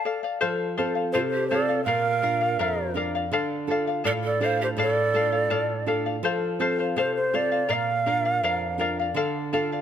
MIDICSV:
0, 0, Header, 1, 5, 480
1, 0, Start_track
1, 0, Tempo, 728155
1, 272, Time_signature, 2, 2, 24, 8
1, 6470, End_track
2, 0, Start_track
2, 0, Title_t, "Charango"
2, 0, Program_c, 0, 24
2, 33, Note_on_c, 0, 69, 56
2, 35, Note_on_c, 0, 74, 55
2, 39, Note_on_c, 0, 77, 59
2, 144, Note_off_c, 0, 77, 0
2, 151, Note_off_c, 0, 74, 0
2, 151, Note_on_c, 0, 77, 54
2, 152, Note_off_c, 0, 69, 0
2, 159, Note_on_c, 0, 74, 49
2, 267, Note_off_c, 0, 74, 0
2, 267, Note_off_c, 0, 77, 0
2, 268, Note_on_c, 0, 69, 74
2, 269, Note_on_c, 0, 72, 89
2, 275, Note_on_c, 0, 77, 95
2, 502, Note_off_c, 0, 69, 0
2, 504, Note_off_c, 0, 72, 0
2, 509, Note_off_c, 0, 77, 0
2, 510, Note_on_c, 0, 69, 61
2, 512, Note_on_c, 0, 72, 69
2, 517, Note_on_c, 0, 77, 65
2, 619, Note_off_c, 0, 77, 0
2, 625, Note_off_c, 0, 72, 0
2, 627, Note_on_c, 0, 77, 47
2, 630, Note_off_c, 0, 69, 0
2, 633, Note_on_c, 0, 72, 40
2, 742, Note_off_c, 0, 72, 0
2, 748, Note_on_c, 0, 69, 79
2, 749, Note_off_c, 0, 77, 0
2, 750, Note_on_c, 0, 72, 74
2, 755, Note_on_c, 0, 77, 71
2, 985, Note_off_c, 0, 69, 0
2, 990, Note_off_c, 0, 72, 0
2, 993, Note_off_c, 0, 77, 0
2, 993, Note_on_c, 0, 69, 56
2, 998, Note_on_c, 0, 72, 57
2, 1001, Note_on_c, 0, 77, 66
2, 1104, Note_off_c, 0, 77, 0
2, 1110, Note_off_c, 0, 72, 0
2, 1112, Note_off_c, 0, 69, 0
2, 1112, Note_on_c, 0, 77, 51
2, 1118, Note_on_c, 0, 72, 41
2, 1231, Note_off_c, 0, 77, 0
2, 1232, Note_on_c, 0, 70, 69
2, 1234, Note_off_c, 0, 72, 0
2, 1237, Note_on_c, 0, 74, 67
2, 1239, Note_on_c, 0, 77, 80
2, 1457, Note_off_c, 0, 70, 0
2, 1462, Note_off_c, 0, 74, 0
2, 1465, Note_on_c, 0, 70, 58
2, 1467, Note_off_c, 0, 77, 0
2, 1470, Note_on_c, 0, 74, 59
2, 1475, Note_on_c, 0, 77, 62
2, 1580, Note_off_c, 0, 77, 0
2, 1585, Note_off_c, 0, 74, 0
2, 1587, Note_off_c, 0, 70, 0
2, 1587, Note_on_c, 0, 77, 52
2, 1593, Note_on_c, 0, 74, 40
2, 1705, Note_off_c, 0, 74, 0
2, 1709, Note_off_c, 0, 77, 0
2, 1710, Note_on_c, 0, 70, 78
2, 1713, Note_on_c, 0, 74, 67
2, 1720, Note_on_c, 0, 77, 74
2, 1941, Note_off_c, 0, 70, 0
2, 1948, Note_off_c, 0, 74, 0
2, 1949, Note_on_c, 0, 70, 59
2, 1951, Note_off_c, 0, 77, 0
2, 1956, Note_on_c, 0, 74, 63
2, 1959, Note_on_c, 0, 77, 63
2, 2068, Note_off_c, 0, 77, 0
2, 2069, Note_off_c, 0, 70, 0
2, 2073, Note_off_c, 0, 74, 0
2, 2076, Note_on_c, 0, 77, 61
2, 2084, Note_on_c, 0, 74, 46
2, 2189, Note_off_c, 0, 74, 0
2, 2190, Note_off_c, 0, 77, 0
2, 2192, Note_on_c, 0, 69, 78
2, 2197, Note_on_c, 0, 74, 80
2, 2198, Note_on_c, 0, 77, 92
2, 2431, Note_off_c, 0, 69, 0
2, 2433, Note_off_c, 0, 74, 0
2, 2434, Note_off_c, 0, 77, 0
2, 2440, Note_on_c, 0, 69, 56
2, 2443, Note_on_c, 0, 74, 66
2, 2447, Note_on_c, 0, 77, 73
2, 2545, Note_off_c, 0, 77, 0
2, 2553, Note_on_c, 0, 77, 56
2, 2554, Note_off_c, 0, 74, 0
2, 2555, Note_off_c, 0, 69, 0
2, 2562, Note_on_c, 0, 74, 45
2, 2659, Note_off_c, 0, 74, 0
2, 2663, Note_off_c, 0, 77, 0
2, 2663, Note_on_c, 0, 69, 78
2, 2667, Note_on_c, 0, 74, 72
2, 2671, Note_on_c, 0, 77, 82
2, 2900, Note_off_c, 0, 69, 0
2, 2907, Note_off_c, 0, 74, 0
2, 2908, Note_on_c, 0, 69, 62
2, 2910, Note_off_c, 0, 77, 0
2, 2915, Note_on_c, 0, 74, 60
2, 2921, Note_on_c, 0, 77, 60
2, 3021, Note_off_c, 0, 77, 0
2, 3029, Note_off_c, 0, 69, 0
2, 3029, Note_on_c, 0, 77, 47
2, 3032, Note_off_c, 0, 74, 0
2, 3043, Note_on_c, 0, 74, 39
2, 3145, Note_off_c, 0, 74, 0
2, 3149, Note_off_c, 0, 77, 0
2, 3150, Note_on_c, 0, 69, 78
2, 3153, Note_on_c, 0, 74, 86
2, 3160, Note_on_c, 0, 77, 83
2, 3384, Note_off_c, 0, 69, 0
2, 3388, Note_off_c, 0, 74, 0
2, 3392, Note_on_c, 0, 69, 56
2, 3394, Note_off_c, 0, 77, 0
2, 3396, Note_on_c, 0, 74, 64
2, 3403, Note_on_c, 0, 77, 61
2, 3500, Note_off_c, 0, 77, 0
2, 3508, Note_on_c, 0, 77, 51
2, 3510, Note_off_c, 0, 69, 0
2, 3512, Note_off_c, 0, 74, 0
2, 3519, Note_on_c, 0, 74, 38
2, 3623, Note_off_c, 0, 74, 0
2, 3624, Note_off_c, 0, 77, 0
2, 3626, Note_on_c, 0, 69, 75
2, 3631, Note_on_c, 0, 74, 71
2, 3631, Note_on_c, 0, 77, 81
2, 3863, Note_off_c, 0, 69, 0
2, 3869, Note_off_c, 0, 77, 0
2, 3870, Note_off_c, 0, 74, 0
2, 3871, Note_on_c, 0, 69, 66
2, 3876, Note_on_c, 0, 74, 66
2, 3876, Note_on_c, 0, 77, 65
2, 3986, Note_off_c, 0, 77, 0
2, 3989, Note_off_c, 0, 74, 0
2, 3990, Note_off_c, 0, 69, 0
2, 3994, Note_on_c, 0, 77, 50
2, 3997, Note_on_c, 0, 74, 42
2, 4111, Note_off_c, 0, 77, 0
2, 4112, Note_on_c, 0, 69, 75
2, 4113, Note_off_c, 0, 74, 0
2, 4118, Note_on_c, 0, 72, 80
2, 4122, Note_on_c, 0, 77, 82
2, 4344, Note_off_c, 0, 69, 0
2, 4346, Note_off_c, 0, 72, 0
2, 4352, Note_on_c, 0, 69, 66
2, 4354, Note_off_c, 0, 77, 0
2, 4354, Note_on_c, 0, 72, 64
2, 4362, Note_on_c, 0, 77, 69
2, 4467, Note_off_c, 0, 77, 0
2, 4470, Note_off_c, 0, 69, 0
2, 4472, Note_off_c, 0, 72, 0
2, 4475, Note_on_c, 0, 77, 50
2, 4482, Note_on_c, 0, 72, 44
2, 4592, Note_off_c, 0, 72, 0
2, 4592, Note_off_c, 0, 77, 0
2, 4593, Note_on_c, 0, 69, 70
2, 4599, Note_on_c, 0, 77, 80
2, 4600, Note_on_c, 0, 72, 70
2, 4828, Note_off_c, 0, 69, 0
2, 4831, Note_off_c, 0, 72, 0
2, 4834, Note_off_c, 0, 77, 0
2, 4836, Note_on_c, 0, 69, 49
2, 4839, Note_on_c, 0, 72, 59
2, 4843, Note_on_c, 0, 77, 65
2, 4946, Note_off_c, 0, 77, 0
2, 4950, Note_off_c, 0, 72, 0
2, 4952, Note_off_c, 0, 69, 0
2, 4954, Note_on_c, 0, 77, 54
2, 4958, Note_on_c, 0, 72, 40
2, 5067, Note_on_c, 0, 70, 80
2, 5070, Note_off_c, 0, 77, 0
2, 5073, Note_off_c, 0, 72, 0
2, 5074, Note_on_c, 0, 74, 83
2, 5078, Note_on_c, 0, 77, 77
2, 5308, Note_off_c, 0, 70, 0
2, 5312, Note_off_c, 0, 74, 0
2, 5313, Note_off_c, 0, 77, 0
2, 5315, Note_on_c, 0, 70, 57
2, 5322, Note_on_c, 0, 74, 58
2, 5327, Note_on_c, 0, 77, 66
2, 5430, Note_off_c, 0, 77, 0
2, 5432, Note_off_c, 0, 70, 0
2, 5435, Note_off_c, 0, 74, 0
2, 5438, Note_on_c, 0, 77, 50
2, 5444, Note_on_c, 0, 74, 44
2, 5554, Note_off_c, 0, 77, 0
2, 5555, Note_off_c, 0, 74, 0
2, 5560, Note_on_c, 0, 70, 71
2, 5563, Note_on_c, 0, 74, 78
2, 5567, Note_on_c, 0, 77, 84
2, 5790, Note_off_c, 0, 70, 0
2, 5796, Note_off_c, 0, 74, 0
2, 5798, Note_off_c, 0, 77, 0
2, 5798, Note_on_c, 0, 70, 64
2, 5805, Note_on_c, 0, 74, 71
2, 5807, Note_on_c, 0, 77, 76
2, 5913, Note_off_c, 0, 70, 0
2, 5917, Note_off_c, 0, 74, 0
2, 5918, Note_off_c, 0, 77, 0
2, 5929, Note_on_c, 0, 77, 57
2, 5941, Note_on_c, 0, 74, 44
2, 6035, Note_off_c, 0, 74, 0
2, 6037, Note_off_c, 0, 77, 0
2, 6040, Note_on_c, 0, 69, 88
2, 6042, Note_on_c, 0, 74, 87
2, 6045, Note_on_c, 0, 77, 91
2, 6272, Note_off_c, 0, 69, 0
2, 6276, Note_off_c, 0, 74, 0
2, 6277, Note_off_c, 0, 77, 0
2, 6280, Note_on_c, 0, 69, 61
2, 6284, Note_on_c, 0, 74, 71
2, 6286, Note_on_c, 0, 77, 78
2, 6395, Note_off_c, 0, 69, 0
2, 6397, Note_off_c, 0, 74, 0
2, 6398, Note_off_c, 0, 77, 0
2, 6410, Note_on_c, 0, 77, 51
2, 6415, Note_on_c, 0, 74, 44
2, 6470, Note_off_c, 0, 74, 0
2, 6470, Note_off_c, 0, 77, 0
2, 6470, End_track
3, 0, Start_track
3, 0, Title_t, "Quena"
3, 0, Program_c, 1, 77
3, 740, Note_on_c, 1, 72, 80
3, 780, Note_off_c, 1, 72, 0
3, 854, Note_on_c, 1, 72, 72
3, 969, Note_off_c, 1, 72, 0
3, 973, Note_on_c, 1, 74, 86
3, 1204, Note_off_c, 1, 74, 0
3, 1214, Note_on_c, 1, 77, 103
3, 1915, Note_off_c, 1, 77, 0
3, 2671, Note_on_c, 1, 74, 87
3, 2711, Note_off_c, 1, 74, 0
3, 2813, Note_on_c, 1, 74, 82
3, 2937, Note_on_c, 1, 77, 90
3, 2947, Note_off_c, 1, 74, 0
3, 3043, Note_off_c, 1, 77, 0
3, 3057, Note_on_c, 1, 72, 71
3, 3097, Note_off_c, 1, 72, 0
3, 3179, Note_on_c, 1, 74, 91
3, 3857, Note_off_c, 1, 74, 0
3, 4606, Note_on_c, 1, 72, 83
3, 4710, Note_off_c, 1, 72, 0
3, 4720, Note_on_c, 1, 72, 80
3, 4849, Note_on_c, 1, 74, 84
3, 4859, Note_off_c, 1, 72, 0
3, 5098, Note_on_c, 1, 77, 101
3, 5108, Note_off_c, 1, 74, 0
3, 5804, Note_off_c, 1, 77, 0
3, 6470, End_track
4, 0, Start_track
4, 0, Title_t, "Pan flute"
4, 0, Program_c, 2, 75
4, 755, Note_on_c, 2, 65, 69
4, 795, Note_off_c, 2, 65, 0
4, 880, Note_on_c, 2, 67, 70
4, 987, Note_off_c, 2, 67, 0
4, 998, Note_on_c, 2, 69, 68
4, 1215, Note_off_c, 2, 69, 0
4, 1218, Note_on_c, 2, 70, 88
4, 1917, Note_off_c, 2, 70, 0
4, 2679, Note_on_c, 2, 69, 81
4, 2718, Note_off_c, 2, 69, 0
4, 2794, Note_on_c, 2, 69, 74
4, 2914, Note_on_c, 2, 72, 75
4, 2924, Note_off_c, 2, 69, 0
4, 3031, Note_off_c, 2, 72, 0
4, 3040, Note_on_c, 2, 67, 65
4, 3080, Note_off_c, 2, 67, 0
4, 3166, Note_on_c, 2, 69, 81
4, 3851, Note_off_c, 2, 69, 0
4, 6470, End_track
5, 0, Start_track
5, 0, Title_t, "Nylon-string guitar"
5, 0, Program_c, 3, 24
5, 278, Note_on_c, 3, 53, 67
5, 515, Note_on_c, 3, 60, 46
5, 523, Note_on_c, 3, 65, 43
5, 523, Note_on_c, 3, 69, 51
5, 740, Note_off_c, 3, 53, 0
5, 757, Note_on_c, 3, 48, 68
5, 897, Note_off_c, 3, 60, 0
5, 902, Note_off_c, 3, 65, 0
5, 902, Note_off_c, 3, 69, 0
5, 993, Note_on_c, 3, 60, 48
5, 996, Note_on_c, 3, 65, 46
5, 997, Note_on_c, 3, 69, 50
5, 1184, Note_off_c, 3, 60, 0
5, 1185, Note_off_c, 3, 65, 0
5, 1186, Note_off_c, 3, 69, 0
5, 1219, Note_off_c, 3, 48, 0
5, 1226, Note_on_c, 3, 46, 71
5, 1469, Note_on_c, 3, 62, 48
5, 1473, Note_on_c, 3, 70, 52
5, 1474, Note_on_c, 3, 65, 44
5, 1693, Note_off_c, 3, 46, 0
5, 1708, Note_on_c, 3, 41, 67
5, 1854, Note_off_c, 3, 62, 0
5, 1854, Note_off_c, 3, 70, 0
5, 1856, Note_off_c, 3, 65, 0
5, 1939, Note_on_c, 3, 62, 48
5, 1943, Note_on_c, 3, 65, 47
5, 1946, Note_on_c, 3, 70, 54
5, 2135, Note_off_c, 3, 62, 0
5, 2138, Note_off_c, 3, 65, 0
5, 2139, Note_off_c, 3, 70, 0
5, 2174, Note_off_c, 3, 41, 0
5, 2185, Note_on_c, 3, 50, 71
5, 2421, Note_on_c, 3, 62, 46
5, 2424, Note_on_c, 3, 65, 43
5, 2425, Note_on_c, 3, 69, 54
5, 2653, Note_off_c, 3, 50, 0
5, 2667, Note_on_c, 3, 45, 65
5, 2809, Note_off_c, 3, 62, 0
5, 2810, Note_off_c, 3, 65, 0
5, 2810, Note_off_c, 3, 69, 0
5, 2903, Note_on_c, 3, 62, 50
5, 2903, Note_on_c, 3, 65, 42
5, 2907, Note_on_c, 3, 69, 53
5, 3133, Note_off_c, 3, 45, 0
5, 3141, Note_on_c, 3, 45, 69
5, 3289, Note_off_c, 3, 62, 0
5, 3289, Note_off_c, 3, 65, 0
5, 3292, Note_off_c, 3, 69, 0
5, 3384, Note_on_c, 3, 62, 46
5, 3386, Note_on_c, 3, 65, 43
5, 3387, Note_on_c, 3, 69, 52
5, 3610, Note_off_c, 3, 45, 0
5, 3628, Note_on_c, 3, 45, 63
5, 3770, Note_off_c, 3, 62, 0
5, 3771, Note_off_c, 3, 65, 0
5, 3772, Note_off_c, 3, 69, 0
5, 3865, Note_on_c, 3, 62, 48
5, 3866, Note_on_c, 3, 65, 45
5, 3871, Note_on_c, 3, 69, 49
5, 4058, Note_off_c, 3, 65, 0
5, 4059, Note_off_c, 3, 62, 0
5, 4062, Note_off_c, 3, 69, 0
5, 4094, Note_off_c, 3, 45, 0
5, 4106, Note_on_c, 3, 53, 71
5, 4347, Note_on_c, 3, 60, 47
5, 4348, Note_on_c, 3, 65, 45
5, 4350, Note_on_c, 3, 69, 54
5, 4573, Note_off_c, 3, 53, 0
5, 4590, Note_on_c, 3, 48, 65
5, 4732, Note_off_c, 3, 60, 0
5, 4732, Note_off_c, 3, 65, 0
5, 4734, Note_off_c, 3, 69, 0
5, 4834, Note_on_c, 3, 60, 48
5, 4836, Note_on_c, 3, 65, 44
5, 4840, Note_on_c, 3, 69, 56
5, 5024, Note_off_c, 3, 60, 0
5, 5026, Note_off_c, 3, 65, 0
5, 5026, Note_off_c, 3, 69, 0
5, 5055, Note_off_c, 3, 48, 0
5, 5070, Note_on_c, 3, 46, 70
5, 5314, Note_on_c, 3, 62, 47
5, 5320, Note_on_c, 3, 70, 50
5, 5322, Note_on_c, 3, 65, 42
5, 5535, Note_off_c, 3, 46, 0
5, 5560, Note_on_c, 3, 41, 68
5, 5697, Note_off_c, 3, 62, 0
5, 5698, Note_off_c, 3, 70, 0
5, 5701, Note_off_c, 3, 65, 0
5, 5788, Note_on_c, 3, 62, 51
5, 5792, Note_on_c, 3, 65, 47
5, 5796, Note_on_c, 3, 70, 57
5, 5981, Note_off_c, 3, 62, 0
5, 5982, Note_off_c, 3, 65, 0
5, 5982, Note_off_c, 3, 70, 0
5, 6020, Note_off_c, 3, 41, 0
5, 6028, Note_on_c, 3, 50, 70
5, 6281, Note_on_c, 3, 62, 49
5, 6284, Note_on_c, 3, 65, 46
5, 6289, Note_on_c, 3, 69, 54
5, 6470, Note_off_c, 3, 50, 0
5, 6470, Note_off_c, 3, 62, 0
5, 6470, Note_off_c, 3, 65, 0
5, 6470, Note_off_c, 3, 69, 0
5, 6470, End_track
0, 0, End_of_file